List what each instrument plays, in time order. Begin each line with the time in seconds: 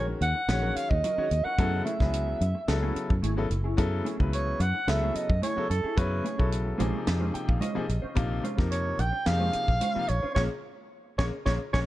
Already playing: fingered electric bass A#1, grand piano D#3 G#3 C#4 F#4 A#4
0.07 muted clean electric guitar stroke
0.21 fingered electric bass D#2, soprano saxophone F#5, closed hi-hat
0.35 muted clean electric guitar stroke
0.48 fingered electric bass A#1, grand piano D#3 G#3 C#4 F#4 C#5, muted clean electric guitar stroke, snare, closed hi-hat
0.62 clean electric guitar F#3 C#4 F4 A#4
0.76 soprano saxophone F5, muted clean electric guitar stroke, closed hi-hat
0.90 fingered electric bass D#2, soprano saxophone D#5, kick
1.04 clean electric guitar F#3 C#4 F4 A#4, closed hi-hat
1.18 grand piano D#3 G#3 C#4 F#4 C#5, muted fingered electric bass stroke, muted clean electric guitar stroke
1.31 fingered electric bass D#2, muted clean electric guitar stroke, closed hi-hat
1.44 clean electric guitar C#4 F4 A#4, soprano saxophone F#5, muted fingered electric bass stroke
1.58 fingered electric bass F#2, grand piano C#3 F#3 B3 E4 A4, clean electric guitar A3 C#4 E4 G#4, kick, closed hi-hat
1.73 muted clean electric guitar stroke
1.85 clean electric guitar A3 C#4 E4 G#4, soprano saxophone E5, closed hi-hat
2.00 fingered electric bass C#2, grand piano C#3 F#3 B3 E4 G#4, muted clean electric guitar stroke, kick, snare
2.13 closed hi-hat
2.27 muted clean electric guitar stroke
2.41 fingered electric bass F#2, closed hi-hat
2.55 muted clean electric guitar stroke
2.68 fingered electric bass C#2, grand piano C#3 F#3 B3 E4 A4, muted clean electric guitar stroke, snare, closed hi-hat
2.82 clean electric guitar A3 C#4 E4 G#4
2.95 muted clean electric guitar stroke, muted fingered electric bass stroke, closed hi-hat
3.10 fingered electric bass F#2, kick
3.22 fingered electric bass G#1, clean electric guitar A3 C#4 E4 G#4, closed hi-hat
3.37 grand piano C#3 F#3 B3 E4 A4, muted clean electric guitar stroke
3.50 fingered electric bass F#1, grand piano E4 A4, muted clean electric guitar stroke, closed hi-hat
3.64 clean electric guitar C#4 E4 G#4
3.77 fingered electric bass F#2, grand piano C#3 F#3 B3 E4 A4, kick, closed hi-hat
3.92 muted clean electric guitar stroke
4.04 clean electric guitar A3 C#4 E4 G#4, closed hi-hat
4.19 fingered electric bass C#2, grand piano C#3 F#3 B3 E4 B4, muted clean electric guitar stroke, kick
4.33 soprano saxophone C#5, closed hi-hat
4.47 muted clean electric guitar stroke
4.60 fingered electric bass F#2, soprano saxophone F#5, closed hi-hat
4.74 muted clean electric guitar stroke
4.87 fingered electric bass C#2, grand piano C#3 F#3 B3 E4 A4, soprano saxophone E5, muted clean electric guitar stroke, snare, closed hi-hat
5.02 clean electric guitar A3 C#4 E4 G#4
5.15 soprano saxophone D#5, muted clean electric guitar stroke, muted fingered electric bass stroke, closed hi-hat
5.30 fingered electric bass F#2, kick
5.42 clean electric guitar A3 C#4 E4 G#4, soprano saxophone C#5, closed hi-hat
5.57 grand piano C#3 F#3 B3 E4 A4, muted clean electric guitar stroke, muted fingered electric bass stroke
5.70 fingered electric bass F#2, soprano saxophone A4, muted clean electric guitar stroke, closed hi-hat
5.84 clean electric guitar C#4 E4 G#4, muted fingered electric bass stroke
5.97 fingered electric bass F#2, grand piano C#3 F#3 B3 E4 B4, soprano saxophone C#5, kick, closed hi-hat
6.11 muted clean electric guitar stroke
6.24 clean electric guitar A3 C#4 E4 G#4, closed hi-hat
6.38 fingered electric bass B1, grand piano C#3 F#3 B3 E4 A4, muted clean electric guitar stroke, kick
6.52 closed hi-hat
6.65 muted clean electric guitar stroke
6.78 fingered electric bass A#1, grand piano C3 F3 A#3 D#4 G#4, clean electric guitar G#3 C#4 F4 C5, closed hi-hat
7.07 fingered electric bass F2, snare, closed hi-hat
7.20 clean electric guitar G#3 C#4 F4 C5
7.33 grand piano G5, muted clean electric guitar stroke, muted fingered electric bass stroke, closed hi-hat
7.48 fingered electric bass A#1, grand piano F5, kick
7.60 clean electric guitar G#3 C#4 F4 C5, grand piano D#5, closed hi-hat
7.75 grand piano C3 F3 A#3 D#4 G#4, muted clean electric guitar stroke, muted fingered electric bass stroke
7.88 fingered electric bass A#1, grand piano D#4 G4, muted clean electric guitar stroke, closed hi-hat
8.02 clean electric guitar C#4 F4 C5, muted fingered electric bass stroke
8.15 fingered electric bass A#1, grand piano C3 F3 A#3 D#4 F4, kick, closed hi-hat
8.31 muted clean electric guitar stroke
8.43 clean electric guitar G#3 C#4 F4 C5, closed hi-hat
8.57 fingered electric bass F2, grand piano C3 F3 A#3 D#4 A#4, muted clean electric guitar stroke, kick, snare
8.71 soprano saxophone C#5, closed hi-hat
8.85 muted clean electric guitar stroke
8.99 fingered electric bass A#1, soprano saxophone G5, closed hi-hat
9.13 muted clean electric guitar stroke
9.26 fingered electric bass F2, grand piano C3 F3 A#3 D#4 G#4, soprano saxophone F5, muted clean electric guitar stroke, snare, closed hi-hat
9.40 clean electric guitar G#3 C#4 F4 C5
9.53 muted clean electric guitar stroke, muted fingered electric bass stroke, closed hi-hat
9.68 fingered electric bass A#1, kick
9.80 clean electric guitar G#3 C#4 F4 C5, closed hi-hat
9.95 grand piano C3 F3 A#3 D#4 F4, muted clean electric guitar stroke, muted fingered electric bass stroke
10.08 fingered electric bass A#1, soprano saxophone C#5, muted clean electric guitar stroke, closed hi-hat
10.23 clean electric guitar C#4 F4 C5
10.34 fingered electric bass A#1, grand piano G#3 A#3 C#4, clean electric guitar F4 G#4 A#4, soprano saxophone C#5, kick, snare
11.18 fingered electric bass A#1, grand piano G#3 A#3 C#4, clean electric guitar F4 G#4 A#4, soprano saxophone C#5, kick, snare
11.45 fingered electric bass A#1, grand piano G#3 A#3 C#4, clean electric guitar F4 G#4 A#4, soprano saxophone C#5, kick, snare
11.73 fingered electric bass A#1, grand piano G#3 A#3 C#4, clean electric guitar F4 G#4 A#4, soprano saxophone C#5, kick, snare